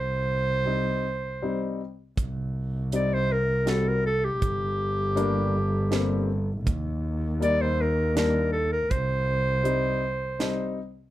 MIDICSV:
0, 0, Header, 1, 5, 480
1, 0, Start_track
1, 0, Key_signature, -3, "minor"
1, 0, Tempo, 748130
1, 1392, Time_signature, 3, 2, 24, 8
1, 7124, End_track
2, 0, Start_track
2, 0, Title_t, "Clarinet"
2, 0, Program_c, 0, 71
2, 0, Note_on_c, 0, 72, 88
2, 1152, Note_off_c, 0, 72, 0
2, 1895, Note_on_c, 0, 74, 76
2, 2013, Note_on_c, 0, 72, 91
2, 2022, Note_off_c, 0, 74, 0
2, 2132, Note_on_c, 0, 70, 80
2, 2142, Note_off_c, 0, 72, 0
2, 2366, Note_on_c, 0, 69, 72
2, 2375, Note_off_c, 0, 70, 0
2, 2490, Note_on_c, 0, 70, 84
2, 2500, Note_off_c, 0, 69, 0
2, 2601, Note_off_c, 0, 70, 0
2, 2605, Note_on_c, 0, 69, 84
2, 2726, Note_on_c, 0, 67, 79
2, 2735, Note_off_c, 0, 69, 0
2, 4039, Note_off_c, 0, 67, 0
2, 4771, Note_on_c, 0, 74, 92
2, 4885, Note_on_c, 0, 72, 89
2, 4895, Note_off_c, 0, 74, 0
2, 5013, Note_on_c, 0, 70, 82
2, 5023, Note_off_c, 0, 72, 0
2, 5243, Note_off_c, 0, 70, 0
2, 5246, Note_on_c, 0, 70, 80
2, 5462, Note_off_c, 0, 70, 0
2, 5469, Note_on_c, 0, 69, 72
2, 5582, Note_off_c, 0, 69, 0
2, 5596, Note_on_c, 0, 70, 76
2, 5716, Note_on_c, 0, 72, 83
2, 5726, Note_off_c, 0, 70, 0
2, 6913, Note_off_c, 0, 72, 0
2, 7124, End_track
3, 0, Start_track
3, 0, Title_t, "Upright piano"
3, 0, Program_c, 1, 0
3, 418, Note_on_c, 1, 55, 50
3, 424, Note_on_c, 1, 60, 55
3, 431, Note_on_c, 1, 63, 65
3, 665, Note_off_c, 1, 55, 0
3, 668, Note_off_c, 1, 60, 0
3, 671, Note_off_c, 1, 63, 0
3, 913, Note_on_c, 1, 55, 64
3, 919, Note_on_c, 1, 60, 52
3, 920, Note_on_c, 1, 63, 61
3, 1153, Note_off_c, 1, 55, 0
3, 1155, Note_off_c, 1, 60, 0
3, 1156, Note_off_c, 1, 63, 0
3, 1878, Note_on_c, 1, 55, 53
3, 1880, Note_on_c, 1, 60, 57
3, 1883, Note_on_c, 1, 63, 57
3, 2115, Note_off_c, 1, 55, 0
3, 2117, Note_off_c, 1, 60, 0
3, 2118, Note_off_c, 1, 63, 0
3, 2346, Note_on_c, 1, 55, 53
3, 2355, Note_on_c, 1, 60, 47
3, 2357, Note_on_c, 1, 66, 59
3, 2589, Note_off_c, 1, 55, 0
3, 2594, Note_off_c, 1, 60, 0
3, 2595, Note_off_c, 1, 66, 0
3, 3309, Note_on_c, 1, 55, 73
3, 3314, Note_on_c, 1, 58, 70
3, 3317, Note_on_c, 1, 62, 74
3, 3551, Note_off_c, 1, 55, 0
3, 3553, Note_off_c, 1, 58, 0
3, 3555, Note_off_c, 1, 62, 0
3, 3789, Note_on_c, 1, 55, 62
3, 3794, Note_on_c, 1, 58, 57
3, 3795, Note_on_c, 1, 60, 72
3, 4031, Note_off_c, 1, 55, 0
3, 4033, Note_off_c, 1, 58, 0
3, 4034, Note_off_c, 1, 60, 0
3, 4748, Note_on_c, 1, 55, 61
3, 4751, Note_on_c, 1, 58, 57
3, 4756, Note_on_c, 1, 63, 59
3, 4990, Note_off_c, 1, 55, 0
3, 4992, Note_off_c, 1, 58, 0
3, 4994, Note_off_c, 1, 63, 0
3, 5229, Note_on_c, 1, 55, 53
3, 5232, Note_on_c, 1, 58, 51
3, 5236, Note_on_c, 1, 62, 59
3, 5470, Note_off_c, 1, 55, 0
3, 5472, Note_off_c, 1, 58, 0
3, 5474, Note_off_c, 1, 62, 0
3, 6181, Note_on_c, 1, 55, 61
3, 6188, Note_on_c, 1, 60, 54
3, 6193, Note_on_c, 1, 63, 65
3, 6426, Note_off_c, 1, 55, 0
3, 6430, Note_off_c, 1, 60, 0
3, 6432, Note_off_c, 1, 63, 0
3, 6668, Note_on_c, 1, 55, 57
3, 6671, Note_on_c, 1, 60, 51
3, 6679, Note_on_c, 1, 63, 66
3, 6909, Note_off_c, 1, 55, 0
3, 6911, Note_off_c, 1, 60, 0
3, 6915, Note_off_c, 1, 63, 0
3, 7124, End_track
4, 0, Start_track
4, 0, Title_t, "Double bass"
4, 0, Program_c, 2, 43
4, 0, Note_on_c, 2, 36, 103
4, 812, Note_off_c, 2, 36, 0
4, 1395, Note_on_c, 2, 36, 103
4, 2837, Note_on_c, 2, 31, 113
4, 2846, Note_off_c, 2, 36, 0
4, 4279, Note_on_c, 2, 39, 116
4, 4289, Note_off_c, 2, 31, 0
4, 5717, Note_on_c, 2, 36, 110
4, 5727, Note_off_c, 2, 39, 0
4, 6579, Note_off_c, 2, 36, 0
4, 7124, End_track
5, 0, Start_track
5, 0, Title_t, "Drums"
5, 1395, Note_on_c, 9, 36, 72
5, 1397, Note_on_c, 9, 42, 49
5, 1459, Note_off_c, 9, 36, 0
5, 1461, Note_off_c, 9, 42, 0
5, 1876, Note_on_c, 9, 42, 48
5, 1940, Note_off_c, 9, 42, 0
5, 2355, Note_on_c, 9, 38, 51
5, 2355, Note_on_c, 9, 42, 45
5, 2419, Note_off_c, 9, 38, 0
5, 2419, Note_off_c, 9, 42, 0
5, 2836, Note_on_c, 9, 36, 71
5, 2836, Note_on_c, 9, 42, 46
5, 2900, Note_off_c, 9, 36, 0
5, 2900, Note_off_c, 9, 42, 0
5, 3318, Note_on_c, 9, 42, 45
5, 3382, Note_off_c, 9, 42, 0
5, 3797, Note_on_c, 9, 38, 56
5, 3797, Note_on_c, 9, 42, 40
5, 3861, Note_off_c, 9, 38, 0
5, 3861, Note_off_c, 9, 42, 0
5, 4278, Note_on_c, 9, 36, 85
5, 4278, Note_on_c, 9, 42, 45
5, 4342, Note_off_c, 9, 36, 0
5, 4342, Note_off_c, 9, 42, 0
5, 4763, Note_on_c, 9, 42, 44
5, 4828, Note_off_c, 9, 42, 0
5, 5240, Note_on_c, 9, 38, 68
5, 5240, Note_on_c, 9, 42, 52
5, 5304, Note_off_c, 9, 38, 0
5, 5304, Note_off_c, 9, 42, 0
5, 5715, Note_on_c, 9, 42, 41
5, 5717, Note_on_c, 9, 36, 74
5, 5780, Note_off_c, 9, 42, 0
5, 5781, Note_off_c, 9, 36, 0
5, 6193, Note_on_c, 9, 42, 45
5, 6257, Note_off_c, 9, 42, 0
5, 6673, Note_on_c, 9, 38, 63
5, 6673, Note_on_c, 9, 42, 46
5, 6738, Note_off_c, 9, 38, 0
5, 6738, Note_off_c, 9, 42, 0
5, 7124, End_track
0, 0, End_of_file